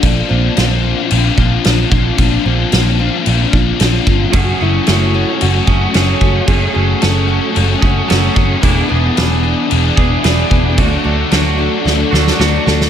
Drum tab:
CC |x---x---x---x---|x---x---x---x---|x---x---x---x---|x---x---x---x---|
SD |----o-------o---|----o-------o---|----o-------o---|----o-------o---|
BD |o---------o---o-|o---------o---o-|o---------o---o-|o---------o---o-|

CC |x---x---x---x---|x---x-----------|
SD |----o-------o---|----o---o-ooo-oo|
BD |o---------o---o-|o---------------|